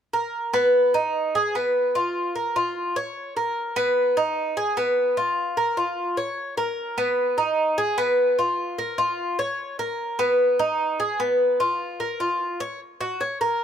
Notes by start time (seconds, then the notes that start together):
0.13 A#4
0.54 B3
0.94 D#4
1.35 G#4
1.55 B3
1.95 F4
2.35 A#4
2.56 F4
2.96 C#5
3.37 A#4
3.76 B3
4.17 D#4
4.57 G#4
4.77 B3
5.17 F4
5.57 A#4
5.77 F4
6.17 C#5
6.57 A#4
6.98 B3
7.38 D#4
7.78 G#4
7.98 B3
8.39 F4
8.78 A#4
8.98 F4
9.39 C#5
9.79 A#4
10.19 B3
10.59 D#4
11.00 G#4
11.20 B3
11.60 F4
12.00 A#4
12.20 F4
12.60 C#5
13.01 F#4
13.21 C#5
13.41 A#4